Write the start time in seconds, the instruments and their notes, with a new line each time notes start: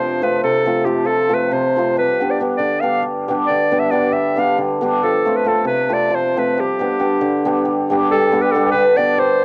Already playing: hammered dulcimer C3 F3, clarinet C5
0.22 hammered dulcimer F3 A3 C4 F4, clarinet B4
0.43 hammered dulcimer C3, clarinet A4
0.66 hammered dulcimer F3 A3 C4 F4
0.85 hammered dulcimer F3 A3 C4 F4, clarinet G4
1.05 hammered dulcimer F3, clarinet A4
1.29 hammered dulcimer F3 A3 C4 F4
1.34 clarinet B4
1.51 hammered dulcimer C3, clarinet C5
1.76 hammered dulcimer F3 A3 C4 F4
1.97 hammered dulcimer G3, clarinet B4
2.20 hammered dulcimer G3 B3 D4 G4
2.31 clarinet D5
2.40 hammered dulcimer G3 B3 D4 G4
2.57 hammered dulcimer D3, clarinet D5
2.81 hammered dulcimer G3 B3 D4 G4, clarinet F5
3.03 hammered dulcimer G3
3.28 hammered dulcimer G3 B3 D4 G4
3.47 hammered dulcimer D3, clarinet D5
3.71 hammered dulcimer G3 B3 D4 G4
3.80 clarinet E5
3.91 hammered dulcimer G3 B3 D4 G4, clarinet D5
4.12 hammered dulcimer G3, clarinet E5
4.36 hammered dulcimer G3 B3 D4 G4, clarinet F5
4.58 hammered dulcimer D3
4.81 hammered dulcimer G3 B3 D4 G4
5.03 hammered dulcimer F3, clarinet A4
5.25 hammered dulcimer A3 C4 F4 A4
5.37 clarinet B4
5.45 hammered dulcimer A3 C4 F4 A4, clarinet A4
5.65 hammered dulcimer C3, clarinet B4
5.89 hammered dulcimer A3 C4 F4 A4
5.93 clarinet D5
6.10 hammered dulcimer F3
6.15 clarinet C5
6.36 hammered dulcimer A3 C4 F4 A4, clarinet B4
6.57 hammered dulcimer G3, clarinet G4
6.79 hammered dulcimer G3 B3 D4 G4
6.99 hammered dulcimer G3 B3 D4 G4
7.21 hammered dulcimer D3
7.45 hammered dulcimer G3 B3 D4 G4
7.65 hammered dulcimer G3
7.90 hammered dulcimer G3 B3 D4 G4
8.11 hammered dulcimer G3, clarinet A4
8.32 hammered dulcimer G3 B3 D4 G4
8.42 clarinet B4
8.51 hammered dulcimer G3 B3, clarinet A4
8.55 hammered dulcimer D4 G4
8.72 hammered dulcimer D3, clarinet B4
8.96 hammered dulcimer G3 B3 D4 G4, clarinet D5
9.18 hammered dulcimer G3, clarinet C5